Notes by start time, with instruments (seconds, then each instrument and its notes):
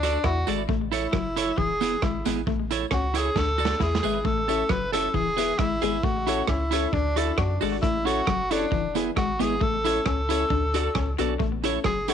Already playing: sub bass D2, tenor saxophone D4
0.03 clean electric guitar F#4 A4 D5, closed hi-hat, tambourine
0.24 sub bass E2, clean electric guitar E4, tenor saxophone F#4, kick, cross-stick
0.47 sub bass G#1, clean electric guitar G#3 F#4 A4 D5, closed hi-hat, tambourine
0.69 sub bass A1, clean electric guitar A3, kick
0.92 clean electric guitar E4 A4 C#5, tenor saxophone E4, closed hi-hat, tambourine
1.12 sub bass F#1, clean electric guitar F#3, muted clean electric guitar stroke, kick, cross-stick
1.36 clean electric guitar E4 A4 C#5, closed hi-hat, tambourine
1.58 sub bass E1, clean electric guitar E3, tenor saxophone G#4, kick
1.81 clean electric guitar B3 E4 G#4, closed hi-hat, tambourine
2.02 sub bass G#1, clean electric guitar G#3, tenor saxophone E4, kick, cross-stick
2.25 sub bass G#1, clean electric guitar G#3 B3 E4 G#4, closed hi-hat, tambourine
2.47 sub bass A1, clean electric guitar A3, kick
2.71 clean electric guitar E4 A4 C#5, closed hi-hat, tambourine
2.91 sub bass C#2, clean electric guitar C#4, tenor saxophone F#4, muted clean electric guitar stroke, kick, cross-stick
3.14 clean electric guitar E4 A4 C#5, closed hi-hat, tambourine
3.18 tenor saxophone G#4
3.36 sub bass D2, clean electric guitar D4, tenor saxophone A4, kick, snare
3.58 clean electric guitar F#4 A4 D5, tambourine
3.65 snare
3.80 sub bass E2, clean electric guitar E4, tenor saxophone G#4, kick, snare
3.95 snare
4.03 sub bass G#1, clean electric guitar G#3 G#4 B4 E5, tambourine
4.25 sub bass A1, clean electric guitar A3, tenor saxophone A4, kick
4.48 upright piano C#4 E4 A4, clean electric guitar A4 C#5 E5, closed hi-hat, tambourine
4.69 sub bass F#1, clean electric guitar F#3, tenor saxophone B4, muted clean electric guitar stroke, kick, cross-stick
4.92 upright piano C#4 E4 A4, clean electric guitar A4 C#5 E5, tenor saxophone A4, cross-stick, closed hi-hat, tambourine
5.14 sub bass E1, clean electric guitar E3, tenor saxophone G#4, kick
5.37 upright piano B3 E4 G#4, clean electric guitar G#4 B4 E5, closed hi-hat, tambourine
5.59 sub bass G#1, clean electric guitar G#3, upright piano E4 G#4, tenor saxophone E4, kick, cross-stick
5.82 sub bass G#1, clean electric guitar G#3 G#4 B4 E5, upright piano B3 E4 G#4, closed hi-hat, tambourine
6.03 sub bass A1, clean electric guitar A3, tenor saxophone F#4, kick
6.27 upright piano C#4 E4 A4, clean electric guitar E4 A4 C#5, closed hi-hat, tambourine
6.47 sub bass C#2, clean electric guitar C#4, tenor saxophone E4, muted clean electric guitar stroke, kick, cross-stick
6.71 upright piano C#4 E4 A4, clean electric guitar E4 A4 C#5, closed hi-hat, tambourine
6.93 sub bass D2, tenor saxophone D4, clean electric guitar D4, kick
7.16 upright piano D4 F#4 A4, tenor saxophone E4, clean electric guitar F#4 A4 D5, closed hi-hat, tambourine
7.38 sub bass F#2, tenor saxophone D4, clean electric guitar F#4, kick, cross-stick
7.61 sub bass G#1, clean electric guitar G#3 F#4 A4 D5, upright piano D4 F#4 A4, open hi-hat, tambourine
7.82 sub bass A1, clean electric guitar A3, tenor saxophone E4, kick, hi-hat pedal
8.05 upright piano C#4 E4 A4, clean electric guitar E4 A4 C#5, tenor saxophone F#4, closed hi-hat, tambourine
8.27 sub bass F#1, clean electric guitar F#3, muted clean electric guitar stroke, kick, cross-stick
8.50 upright piano C#4 E4 A4, tenor saxophone D4, clean electric guitar E4 A4 C#5, closed hi-hat, tambourine
8.72 sub bass E1, clean electric guitar E3, kick
8.95 upright piano B3 E4 G#4, clean electric guitar B3 E4 G#4, closed hi-hat, tambourine
9.16 sub bass G#1, clean electric guitar G#3, upright piano E4 G#4, tenor saxophone F#4, kick, cross-stick
9.39 sub bass G#1, clean electric guitar G#3 B3 E4 G#4, upright piano B3 E4 G#4, tenor saxophone G#4, closed hi-hat, tambourine
9.61 sub bass A1, clean electric guitar A3, tenor saxophone A4, kick
9.85 upright piano C#4 E4 A4, clean electric guitar E4 A4 C#5, closed hi-hat, tambourine
10.06 sub bass C#2, clean electric guitar C#4, tenor saxophone A4, muted clean electric guitar stroke, kick, cross-stick
10.29 upright piano C#4 E4 A4, clean electric guitar E4 A4 C#5, closed hi-hat, tambourine
10.50 sub bass D2, clean electric guitar D4, kick
10.73 upright piano D4 F#4 A4, clean electric guitar F#4 A4 D5, closed hi-hat, tambourine
10.95 sub bass C#2, clean electric guitar C#4, kick, cross-stick
11.18 sub bass B1, clean electric guitar B3 F#4 A4 D5, upright piano D4 F#4 A4, closed hi-hat, tambourine
11.39 sub bass A1, clean electric guitar A3, kick
11.63 upright piano C#4 E4 A4, clean electric guitar E4 A4 C#5, closed hi-hat, tambourine
11.84 sub bass F#1, clean electric guitar F#3, tenor saxophone G#4, muted clean electric guitar stroke, kick, cross-stick
12.08 upright piano C#4 E4 A4, clean electric guitar E4 A4 C#5, tenor saxophone F#4, cross-stick, closed hi-hat, tambourine